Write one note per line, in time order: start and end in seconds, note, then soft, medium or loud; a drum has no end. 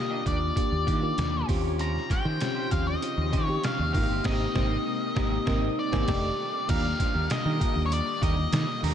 0.00 0.25 A#3 medium
0.00 0.26 D4 medium
0.00 0.26 F4 medium
0.00 0.26 G4 medium
0.00 0.22 D#5 medium
0.10 0.24 A#3 medium
0.10 0.24 D4 medium
0.10 0.25 G4 medium
0.25 0.50 D#2 medium
0.25 0.39 A#3 medium
0.25 0.44 A#3 medium
0.25 0.39 D4 medium
0.25 0.45 D4 medium
0.25 0.45 F4 medium
0.25 0.39 G4 medium
0.25 0.45 G4 medium
0.25 1.46 D5 medium
0.25 kick medium
0.25 closed hi-hat medium
0.40 muted clean electric guitar stroke medium
0.55 0.85 A#3 medium
0.55 0.85 D4 medium
0.55 0.85 F4 medium
0.55 0.85 G4 medium
0.55 muted clean electric guitar stroke soft
0.55 kick medium
0.55 closed hi-hat medium
0.71 0.84 D#2 medium
0.71 muted clean electric guitar stroke soft
0.86 1.11 D#3 medium
0.86 1.04 A#3 medium
0.86 1.02 D4 medium
0.86 1.01 G4 medium
0.86 kick medium
0.86 closed hi-hat medium
1.02 1.31 A#3 medium
1.02 1.31 D4 medium
1.02 1.31 F4 medium
1.02 1.31 G4 medium
1.02 muted clean electric guitar stroke soft
1.17 1.42 D#2 loud
1.17 muted clean electric guitar stroke soft
1.17 snare loud
1.17 closed hi-hat medium
1.32 muted clean electric guitar stroke soft
1.47 1.97 D#2 medium
1.47 2.22 C4 medium
1.47 1.63 C#4 medium
1.47 2.23 C#4 medium
1.47 2.23 F4 medium
1.47 1.62 G4 medium
1.47 2.23 G4 medium
1.47 1.63 C5 medium
1.47 kick loud
1.47 snare soft
1.47 open hi-hat medium
1.63 1.77 C#4 soft
1.63 1.77 G4 medium
1.63 1.77 C#5 medium
1.78 3.92 C#3 medium
1.78 3.92 F3 medium
1.78 1.96 C#4 medium
1.78 6.04 D#4 medium
1.78 1.94 G4 medium
1.78 6.04 G4 medium
1.78 3.92 C5 medium
1.78 1.93 C5 medium
1.78 2.12 A#5 loud
1.78 closed hi-hat medium
1.94 muted clean electric guitar stroke soft
1.94 snare soft
2.09 2.23 C#4 medium
2.09 2.23 G4 medium
2.09 2.24 C#5 medium
2.09 2.72 G5 loud
2.09 kick medium
2.09 snare soft
2.09 closed hi-hat medium
2.25 2.37 D#3 loud
2.25 2.39 C#4 soft
2.25 2.39 G4 medium
2.25 2.38 C5 medium
2.40 2.59 C4 medium
2.40 2.60 C#4 medium
2.40 2.60 F4 medium
2.40 2.60 G4 medium
2.40 muted clean electric guitar stroke soft
2.40 snare medium
2.40 closed hi-hat medium
2.55 2.70 C#4 medium
2.55 2.70 G4 medium
2.55 2.71 C5 medium
2.71 2.96 D#2 medium
2.71 2.90 C4 medium
2.71 2.84 C#4 medium
2.71 2.90 C#4 medium
2.71 2.90 F4 medium
2.71 2.85 G4 medium
2.71 2.91 G4 medium
2.71 2.85 C5 medium
2.71 2.86 F5 medium
2.71 kick medium
2.71 closed hi-hat medium
2.86 3.45 D#5 medium
2.86 muted clean electric guitar stroke soft
3.01 3.30 C4 medium
3.01 3.30 C#4 medium
3.01 3.30 F4 medium
3.01 3.31 G4 medium
3.01 muted clean electric guitar stroke soft
3.01 closed hi-hat medium
3.17 3.34 D#2 medium
3.17 muted clean electric guitar stroke soft
3.32 3.57 D#3 medium
3.32 3.49 C#4 medium
3.32 3.47 G4 medium
3.32 3.46 C5 medium
3.32 kick medium
3.32 closed hi-hat medium
3.45 3.76 C4 medium
3.45 3.76 C#4 medium
3.45 3.76 F4 medium
3.45 3.76 G4 medium
3.45 3.66 C#5 medium
3.45 muted clean electric guitar stroke medium
3.63 3.92 F5 medium
3.63 muted clean electric guitar stroke soft
3.63 snare loud
3.63 closed hi-hat medium
3.78 3.91 D#2 medium
3.78 muted clean electric guitar stroke soft
3.93 4.06 G#1 loud
3.93 6.06 C3 medium
3.93 6.06 G#3 medium
3.93 6.06 A#3 medium
3.93 4.23 A#3 medium
3.93 4.09 C4 medium
3.93 4.24 C4 medium
3.93 4.24 D#4 medium
3.93 4.01 F4 medium
3.93 4.09 G4 medium
3.93 4.09 A#4 loud
3.93 4.25 F5 medium
3.93 kick loud
3.93 snare soft
3.93 open hi-hat medium
4.02 4.29 G4 medium
4.09 4.21 G1 medium
4.09 4.23 C4 soft
4.09 4.23 G4 medium
4.09 4.22 C5 medium
4.24 4.45 G#1 loud
4.24 4.45 A#3 medium
4.24 4.45 C4 loud
4.24 4.46 C4 loud
4.24 4.46 D#4 loud
4.24 4.45 G4 medium
4.24 4.46 A#4 loud
4.24 6.04 D#5 medium
4.24 kick loud
4.24 snare loud
4.24 crash medium
4.32 4.50 G4 medium
4.55 4.76 G#1 loud
4.55 4.76 A#3 medium
4.55 4.76 C4 loud
4.55 4.76 D#4 loud
4.55 4.76 G4 medium
4.55 4.76 C5 loud
4.55 kick loud
4.55 snare loud
5.15 5.37 G#1 medium
5.15 5.37 A#3 medium
5.15 5.37 C4 loud
5.15 5.37 C4 medium
5.15 5.38 D#4 medium
5.15 5.37 G4 loud
5.15 5.38 G4 loud
5.15 5.37 A#4 loud
5.15 kick loud
5.15 snare loud
5.46 5.68 G#1 loud
5.46 5.67 A#3 loud
5.46 5.67 C4 loud
5.46 5.68 D#4 loud
5.46 5.68 G4 loud
5.46 5.68 A#4 loud
5.46 kick loud
5.46 snare loud
5.79 6.69 D5 medium
5.92 6.06 G#1 loud
5.92 6.05 A#3 loud
5.92 6.05 C4 loud
5.92 6.06 C4 medium
5.92 6.06 D#4 loud
5.92 6.06 G4 loud
5.92 6.06 A#4 loud
5.92 6.06 G#5 loud
5.92 kick loud
5.92 snare medium
6.08 6.29 F1 loud
6.08 6.67 D#3 medium
6.08 6.67 G3 medium
6.08 6.29 A3 medium
6.08 6.69 A3 medium
6.08 6.29 D4 loud
6.08 6.69 D4 medium
6.08 6.29 D#4 loud
6.08 6.68 F4 medium
6.08 6.29 G4 loud
6.08 6.29 A4 loud
6.08 6.29 D5 loud
6.08 6.29 G5 loud
6.08 kick loud
6.08 snare loud
6.08 crash medium
6.68 6.93 D#2 loud
6.68 8.94 D3 medium
6.68 8.94 D#3 medium
6.68 8.94 G3 medium
6.68 8.94 A#3 medium
6.68 7.24 A#3 medium
6.68 6.86 D4 medium
6.68 7.24 D4 medium
6.68 7.25 F4 medium
6.68 8.94 G4 medium
6.68 7.25 G4 medium
6.68 6.84 G4 medium
6.68 6.83 A#4 loud
6.68 7.31 F5 loud
6.68 kick loud
6.68 closed hi-hat medium
6.68 crash loud
6.84 muted clean electric guitar stroke soft
6.84 snare soft
6.99 7.12 D4 medium
6.99 7.13 G4 medium
6.99 7.13 C5 medium
6.99 kick medium
6.99 snare soft
6.99 closed hi-hat medium
7.14 7.27 D#2 loud
7.14 7.28 D4 soft
7.14 7.28 G4 medium
7.14 7.28 A#4 medium
7.30 7.81 D#5 medium
7.30 muted clean electric guitar stroke soft
7.30 snare loud
7.30 closed hi-hat medium
7.45 7.57 D#3 medium
7.45 7.58 D4 medium
7.45 7.59 G4 medium
7.45 7.60 A#4 medium
7.59 8.34 A#3 medium
7.59 7.73 D4 medium
7.59 8.34 D4 medium
7.59 8.35 F4 medium
7.59 8.35 G4 medium
7.59 7.74 G4 medium
7.59 7.74 A#4 medium
7.59 kick medium
7.59 closed hi-hat medium
7.75 8.00 D#2 medium
7.75 muted clean electric guitar stroke soft
7.86 7.92 C#5 medium
7.90 8.23 D5 medium
7.90 muted clean electric guitar stroke soft
7.90 closed hi-hat loud
8.06 muted clean electric guitar stroke soft
8.21 8.46 D#2 medium
8.21 8.38 D4 medium
8.21 8.37 G4 medium
8.21 8.36 A#4 medium
8.21 8.80 D#5 medium
8.21 kick medium
8.21 closed hi-hat medium
8.37 muted clean electric guitar stroke soft
8.52 8.64 D#3 loud
8.52 muted clean electric guitar stroke soft
8.52 snare loud
8.52 closed hi-hat medium
8.67 muted clean electric guitar stroke soft
8.83 8.94 D#2 medium
8.83 8.94 D4 medium
8.83 8.94 G4 medium
8.83 8.94 A#4 medium
8.83 snare soft
8.83 open hi-hat medium